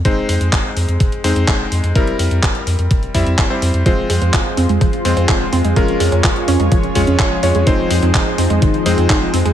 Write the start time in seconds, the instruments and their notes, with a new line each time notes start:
0.05 analog synth bass F1, electric grand piano G#3 C4 D#4 C5, kick, closed hi-hat
0.29 analog synth bass F2, open hi-hat
0.41 analog synth bass F2, closed hi-hat
0.53 analog synth bass F1, kick, clap, closed hi-hat
0.77 analog synth bass F2, open hi-hat
0.88 analog synth bass F2, closed hi-hat
1.00 analog synth bass F1, kick, closed hi-hat
1.12 closed hi-hat
1.24 analog synth bass F2, electric grand piano G#3 C4 D#4 C5, open hi-hat
1.36 analog synth bass F2, closed hi-hat
1.48 analog synth bass F1, kick, clap, closed hi-hat
1.72 analog synth bass F2, open hi-hat
1.84 analog synth bass F2, closed hi-hat
1.96 analog synth bass F1, electric grand piano G3 C4 E4 A#4, kick, closed hi-hat
2.07 closed hi-hat
2.19 analog synth bass F2, open hi-hat
2.31 analog synth bass F2, closed hi-hat
2.43 analog synth bass F1, kick, clap, closed hi-hat
2.55 closed hi-hat
2.67 analog synth bass F2, open hi-hat
2.79 analog synth bass F2, closed hi-hat
2.91 analog synth bass F1, kick, closed hi-hat
3.03 closed hi-hat
3.15 analog synth bass F2, electric grand piano G3 C4 E4 E5, kick, open hi-hat
3.26 analog synth bass F2, closed hi-hat
3.38 analog synth bass F1, kick, clap, closed hi-hat
3.50 electric grand piano G3 C4 E4 C5
3.62 analog synth bass F2, open hi-hat
3.74 analog synth bass F2, closed hi-hat
3.86 analog synth bass F1, analog synth pad F3 F4 G#4 C5, synth arpeggio sound F3, electric grand piano G#3 C4 F4 C5, kick, closed hi-hat
4.10 analog synth bass F2, synth arpeggio sound G#3, open hi-hat
4.22 analog synth bass F2, synth arpeggio sound C4, closed hi-hat
4.33 analog synth bass F1, synth arpeggio sound F4, kick, clap, closed hi-hat
4.57 analog synth bass F2, synth arpeggio sound C4, open hi-hat
4.69 analog synth bass F2, synth arpeggio sound G#3, closed hi-hat
4.81 analog synth bass F1, synth arpeggio sound F3, kick, closed hi-hat
4.93 closed hi-hat
5.05 analog synth bass F2, synth arpeggio sound G#3, electric grand piano G#3 C4 F4 C5, open hi-hat
5.17 analog synth bass F2, synth arpeggio sound C4, closed hi-hat
5.29 analog synth bass F1, synth arpeggio sound F4, kick, clap, closed hi-hat
5.53 analog synth bass F2, synth arpeggio sound C4, open hi-hat
5.64 analog synth bass F2, synth arpeggio sound G#3, closed hi-hat
5.76 analog synth bass F1, synth arpeggio sound F3, electric grand piano G#3 C#4 F4 A#4, analog synth pad C#5, kick, closed hi-hat
5.88 closed hi-hat
6.00 analog synth bass F2, synth arpeggio sound G#3, open hi-hat
6.12 analog synth bass F2, synth arpeggio sound C#4, closed hi-hat
6.24 analog synth bass F1, synth arpeggio sound F4, kick, clap, closed hi-hat
6.36 closed hi-hat
6.48 analog synth bass F2, synth arpeggio sound C#4, open hi-hat
6.60 analog synth bass F2, synth arpeggio sound G#3, closed hi-hat
6.72 analog synth bass F1, synth arpeggio sound F3, kick, closed hi-hat
6.83 closed hi-hat
6.95 analog synth bass F2, electric grand piano G#3 C#4 F4 C#5, synth arpeggio sound G#3, kick, open hi-hat
7.07 analog synth bass F2, synth arpeggio sound C#4, closed hi-hat
7.19 analog synth bass F1, synth arpeggio sound F4, kick, clap, closed hi-hat
7.43 analog synth bass F2, electric grand piano G#3 C#4 F4 C#5, synth arpeggio sound C#4, open hi-hat
7.55 analog synth bass F2, synth arpeggio sound G#3, closed hi-hat
7.67 analog synth bass F1, synth arpeggio sound D#3, electric grand piano G#3 C4 D#4 C5, analog synth pad D#4 C5, kick, closed hi-hat
7.91 analog synth bass F2, synth arpeggio sound G#3, open hi-hat
8.03 analog synth bass F2, synth arpeggio sound C4, closed hi-hat
8.14 analog synth bass F1, synth arpeggio sound D#4, kick, clap, closed hi-hat
8.38 analog synth bass F2, synth arpeggio sound C4, open hi-hat
8.50 analog synth bass F2, synth arpeggio sound G#3, closed hi-hat
8.62 analog synth bass F1, synth arpeggio sound D#3, kick, closed hi-hat
8.74 closed hi-hat
8.86 analog synth bass F2, synth arpeggio sound G#3, electric grand piano G#3 C4 D#4 C5, open hi-hat
8.98 analog synth bass F2, synth arpeggio sound C4, closed hi-hat
9.10 analog synth bass F1, synth arpeggio sound D#4, kick, clap, closed hi-hat
9.34 analog synth bass F2, synth arpeggio sound C4, open hi-hat
9.45 analog synth bass F2, synth arpeggio sound G#3, closed hi-hat